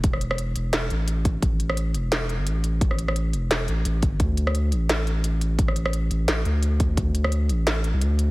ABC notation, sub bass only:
X:1
M:4/4
L:1/16
Q:"Swing 16ths" 1/4=173
K:Dm
V:1 name="Sub bass" clef=bass
E,,,6 E,,,2 E,,,2 A,,,6- | A,,,6 E,,,4- E,,, G,,, A,,,4- | A,,,6 E,,,2 E,,,2 A,,,2 A,,,2 G,,,2 | D,,6 A,,,8- A,,,2- |
A,,,6 A,,,2 A,,,2 D,,6- | D,,6 A,,,4- A,,, C,, D,,4 |]